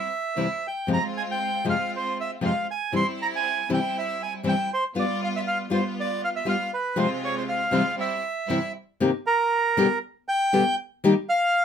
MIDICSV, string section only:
0, 0, Header, 1, 2, 480
1, 0, Start_track
1, 0, Key_signature, -4, "minor"
1, 0, Tempo, 508044
1, 833, Time_signature, 4, 2, 24, 8
1, 11006, End_track
2, 0, Start_track
2, 0, Title_t, "String section"
2, 0, Program_c, 0, 48
2, 348, Note_on_c, 0, 55, 52
2, 348, Note_on_c, 0, 60, 53
2, 353, Note_on_c, 0, 64, 63
2, 552, Note_off_c, 0, 55, 0
2, 552, Note_off_c, 0, 60, 0
2, 555, Note_off_c, 0, 64, 0
2, 831, Note_on_c, 0, 56, 83
2, 831, Note_on_c, 0, 60, 68
2, 835, Note_on_c, 0, 65, 88
2, 1523, Note_off_c, 0, 56, 0
2, 1523, Note_off_c, 0, 60, 0
2, 1525, Note_off_c, 0, 65, 0
2, 1561, Note_on_c, 0, 60, 71
2, 1562, Note_on_c, 0, 56, 68
2, 1565, Note_on_c, 0, 65, 78
2, 2248, Note_off_c, 0, 56, 0
2, 2248, Note_off_c, 0, 60, 0
2, 2250, Note_off_c, 0, 65, 0
2, 2280, Note_on_c, 0, 56, 60
2, 2283, Note_on_c, 0, 60, 52
2, 2283, Note_on_c, 0, 65, 69
2, 2484, Note_off_c, 0, 56, 0
2, 2486, Note_off_c, 0, 60, 0
2, 2486, Note_off_c, 0, 65, 0
2, 2763, Note_on_c, 0, 55, 84
2, 2765, Note_on_c, 0, 60, 78
2, 2766, Note_on_c, 0, 64, 97
2, 3448, Note_off_c, 0, 55, 0
2, 3449, Note_off_c, 0, 60, 0
2, 3449, Note_off_c, 0, 64, 0
2, 3483, Note_on_c, 0, 55, 73
2, 3484, Note_on_c, 0, 60, 63
2, 3486, Note_on_c, 0, 64, 84
2, 4163, Note_off_c, 0, 55, 0
2, 4163, Note_off_c, 0, 60, 0
2, 4164, Note_off_c, 0, 64, 0
2, 4200, Note_on_c, 0, 55, 65
2, 4203, Note_on_c, 0, 60, 56
2, 4206, Note_on_c, 0, 64, 70
2, 4400, Note_off_c, 0, 55, 0
2, 4401, Note_off_c, 0, 60, 0
2, 4403, Note_off_c, 0, 64, 0
2, 4674, Note_on_c, 0, 55, 87
2, 4677, Note_on_c, 0, 59, 69
2, 4680, Note_on_c, 0, 65, 94
2, 5352, Note_off_c, 0, 55, 0
2, 5354, Note_off_c, 0, 59, 0
2, 5355, Note_off_c, 0, 65, 0
2, 5391, Note_on_c, 0, 59, 68
2, 5392, Note_on_c, 0, 55, 72
2, 5393, Note_on_c, 0, 65, 76
2, 6068, Note_off_c, 0, 59, 0
2, 6069, Note_off_c, 0, 55, 0
2, 6070, Note_off_c, 0, 65, 0
2, 6101, Note_on_c, 0, 55, 70
2, 6102, Note_on_c, 0, 59, 61
2, 6105, Note_on_c, 0, 65, 72
2, 6302, Note_off_c, 0, 55, 0
2, 6302, Note_off_c, 0, 59, 0
2, 6304, Note_off_c, 0, 65, 0
2, 6570, Note_on_c, 0, 48, 87
2, 6574, Note_on_c, 0, 56, 80
2, 6574, Note_on_c, 0, 65, 87
2, 6575, Note_on_c, 0, 60, 83
2, 7256, Note_off_c, 0, 48, 0
2, 7258, Note_off_c, 0, 56, 0
2, 7258, Note_off_c, 0, 65, 0
2, 7259, Note_off_c, 0, 60, 0
2, 7285, Note_on_c, 0, 48, 67
2, 7287, Note_on_c, 0, 56, 67
2, 7289, Note_on_c, 0, 60, 64
2, 7290, Note_on_c, 0, 65, 73
2, 7493, Note_off_c, 0, 48, 0
2, 7495, Note_off_c, 0, 56, 0
2, 7495, Note_off_c, 0, 60, 0
2, 7496, Note_off_c, 0, 65, 0
2, 7528, Note_on_c, 0, 60, 69
2, 7529, Note_on_c, 0, 55, 68
2, 7533, Note_on_c, 0, 64, 78
2, 7736, Note_off_c, 0, 60, 0
2, 7737, Note_off_c, 0, 55, 0
2, 7739, Note_off_c, 0, 64, 0
2, 8016, Note_on_c, 0, 55, 72
2, 8018, Note_on_c, 0, 60, 61
2, 8021, Note_on_c, 0, 64, 81
2, 8223, Note_off_c, 0, 55, 0
2, 8224, Note_off_c, 0, 60, 0
2, 8226, Note_off_c, 0, 64, 0
2, 11006, End_track
0, 0, End_of_file